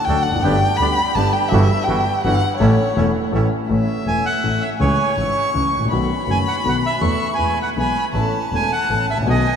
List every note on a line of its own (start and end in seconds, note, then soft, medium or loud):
0.04 0.23 D2 medium
0.04 0.23 F#3 soft
0.04 0.23 D4 soft
0.04 0.24 G5 loud
0.08 0.24 D2 medium
0.08 0.24 D3 medium
0.08 0.24 A3 soft
0.08 0.24 F#4 soft
0.08 0.24 F#4 medium
0.08 0.24 A4 medium
0.22 0.44 F#5 medium
0.27 0.44 F1 soft
0.31 0.36 E2 soft
0.35 0.40 F2 medium
0.35 0.44 F#2 medium
0.42 0.60 G1 medium
0.42 0.60 G2 medium
0.42 0.60 D3 medium
0.42 0.59 G3 medium
0.42 0.60 B3 medium
0.42 0.60 D4 medium
0.42 0.60 G4 medium
0.42 0.78 G5 loud
0.77 0.96 D2 medium
0.77 1.16 B5 loud
0.81 0.96 D2 medium
0.81 0.96 D3 medium
0.81 0.96 G3 soft
0.81 0.96 B3 medium
0.81 0.96 B3 soft
0.81 0.96 D4 soft
0.81 0.96 G4 medium
0.81 0.96 G4 soft
1.14 1.32 G1 medium
1.14 1.32 G2 medium
1.14 1.32 D3 medium
1.14 1.32 G3 soft
1.14 1.32 B3 soft
1.14 1.32 D4 soft
1.14 1.32 G4 medium
1.14 1.34 A5 loud
1.32 1.50 G5 medium
1.48 1.67 G1 medium
1.48 1.67 G2 medium
1.48 1.67 E3 medium
1.48 1.67 G3 medium
1.48 1.67 F#4 medium
1.48 1.85 E5 medium
1.52 1.68 G1 loud
1.52 1.68 G3 medium
1.52 1.67 B3 medium
1.52 1.68 E4 medium
1.52 1.68 F#4 medium
1.84 2.03 G1 soft
1.84 2.03 E3 soft
1.84 2.03 G3 soft
1.84 2.03 B3 soft
1.84 2.03 F#4 soft
1.84 2.23 G5 medium
1.88 2.04 G1 medium
1.88 2.03 G2 medium
1.88 2.04 G3 medium
1.88 2.04 E4 soft
1.88 2.04 F#4 medium
2.21 2.39 G1 medium
2.21 2.39 G2 medium
2.21 2.39 E3 medium
2.21 2.39 G3 soft
2.21 2.40 G3 soft
2.21 2.40 B3 soft
2.21 2.40 F#4 medium
2.21 2.57 F#5 loud
2.25 2.40 G1 medium
2.25 2.40 E4 soft
2.25 2.40 F#4 medium
2.57 2.75 A1 medium
2.57 2.76 A2 medium
2.57 2.75 E3 medium
2.57 2.75 A3 medium
2.57 2.75 C#4 medium
2.57 2.76 C#4 medium
2.57 2.76 E4 medium
2.57 2.75 A4 medium
2.57 3.27 C#5 medium
2.61 2.76 A1 medium
2.96 3.12 E1 medium
2.96 3.12 E2 medium
2.96 3.11 E3 soft
2.96 3.12 A3 soft
2.96 3.12 A3 medium
2.96 3.11 C#4 soft
2.96 3.12 C#4 medium
2.96 3.12 E4 medium
2.96 3.12 A4 medium
3.32 3.48 A1 medium
3.32 3.49 A1 medium
3.32 3.48 A2 medium
3.32 3.48 E3 medium
3.32 3.48 A3 soft
3.32 3.49 A3 soft
3.32 3.48 C#4 soft
3.32 3.49 C#4 soft
3.32 3.49 E4 medium
3.32 3.48 A4 medium
3.69 3.85 A1 medium
3.69 3.85 A2 medium
3.69 3.85 E3 soft
3.69 3.85 A3 soft
3.69 3.85 C#4 soft
3.69 3.85 A4 medium
3.69 4.77 E5 medium
4.06 4.22 E1 soft
4.06 4.22 E2 soft
4.06 4.22 E3 soft
4.06 4.22 A3 soft
4.06 4.22 C#4 soft
4.06 4.22 A4 soft
4.06 4.24 G#5 medium
4.26 4.64 F#5 medium
4.44 4.60 A1 soft
4.44 4.59 A2 soft
4.44 4.59 E3 soft
4.44 4.59 A3 soft
4.44 4.59 C#4 soft
4.44 4.59 A4 soft
4.61 4.70 E5 medium
4.79 4.96 C#2 medium
4.79 4.96 C#3 medium
4.79 4.95 E3 medium
4.79 4.95 G#3 soft
4.79 4.96 C#4 soft
4.79 4.96 G#4 medium
4.79 5.50 C#5 medium
4.79 5.14 G#5 medium
5.16 5.32 G#1 soft
5.16 5.33 G#1 soft
5.16 5.32 G#2 soft
5.16 5.32 E3 soft
5.16 5.32 G#3 soft
5.16 5.32 C#4 soft
5.16 5.33 G#4 soft
5.16 5.87 C#6 medium
5.54 5.70 C#2 soft
5.54 5.70 C#3 soft
5.54 5.69 E3 soft
5.54 5.69 G#3 soft
5.54 5.70 C#4 soft
5.54 5.70 G#4 soft
5.73 5.81 G#1 soft
5.73 5.90 A1 soft
5.80 5.85 A1 soft
5.85 5.91 A#1 medium
5.90 6.06 B1 medium
5.90 6.07 B1 medium
5.90 6.07 B2 medium
5.90 6.06 D#3 medium
5.90 6.06 A3 medium
5.90 6.07 B3 soft
5.90 6.07 F#4 medium
5.90 7.02 B5 medium
6.27 6.43 F#1 soft
6.27 6.44 F#1 soft
6.27 6.43 F#2 soft
6.27 6.43 D#3 soft
6.27 6.43 A3 soft
6.27 6.43 B3 soft
6.27 6.43 F#4 soft
6.27 6.38 G#5 medium
6.48 6.56 F#5 medium
6.64 6.80 B1 soft
6.64 6.80 B2 medium
6.64 6.80 D#3 soft
6.64 6.80 A3 soft
6.64 6.80 B3 soft
6.64 6.81 F#4 soft
6.69 6.76 F#5 medium
6.86 7.28 E5 medium
7.01 7.17 E2 medium
7.01 7.17 E3 medium
7.01 7.17 A3 soft
7.01 7.17 B3 soft
7.01 7.18 A4 medium
7.01 7.37 C#6 medium
7.34 7.54 E2 soft
7.34 7.55 E3 soft
7.34 7.55 G#3 soft
7.34 7.54 B3 soft
7.34 7.58 G#5 medium
7.34 7.74 B5 medium
7.39 7.55 E2 soft
7.39 7.55 G#4 soft
7.62 7.70 F#5 medium
7.76 7.93 B1 soft
7.76 7.93 B2 soft
7.76 7.92 E3 soft
7.76 7.93 G#3 soft
7.76 7.93 B3 soft
7.76 7.93 G#4 soft
7.76 8.05 G#5 medium
7.76 8.12 B5 medium
8.13 8.30 A1 medium
8.13 8.30 A2 medium
8.13 8.30 E3 medium
8.13 8.30 A3 soft
8.13 8.30 C#4 soft
8.13 8.30 A4 medium
8.13 9.29 A5 medium
8.52 8.68 E1 soft
8.52 8.68 E2 soft
8.52 8.68 E3 soft
8.52 8.68 A3 soft
8.52 8.68 C#4 soft
8.52 8.68 A4 soft
8.52 8.71 G#5 medium
8.72 9.06 F#5 medium
8.89 9.05 A1 soft
8.89 9.06 A1 soft
8.89 9.05 A2 soft
8.89 9.05 E3 soft
8.89 9.05 A3 soft
8.89 9.06 C#4 soft
8.89 9.06 A4 soft
9.08 9.26 A1 soft
9.08 9.18 E5 medium
9.13 9.18 G#1 soft
9.18 9.22 A1 soft
9.22 9.27 A#1 medium
9.26 9.42 B1 medium
9.26 9.42 B2 medium
9.26 9.42 D#3 soft
9.26 9.42 A3 medium
9.26 9.42 B3 medium
9.26 9.42 F#4 medium
9.26 9.56 G#5 medium
9.30 9.56 D#5 medium